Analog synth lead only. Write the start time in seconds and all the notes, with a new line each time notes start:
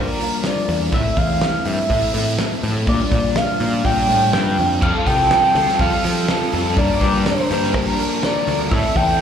Already playing: A#4
0.46 D5
0.94 E5
1.18 F5
1.67 E5
2.89 D5
3.37 F5
3.60 F5
3.85 G5
4.33 G5
4.82 F5
5.06 G5
5.81 F5
6.78 D5
7.27 C5
7.75 A#4
8.24 D5
8.71 E5
8.96 G5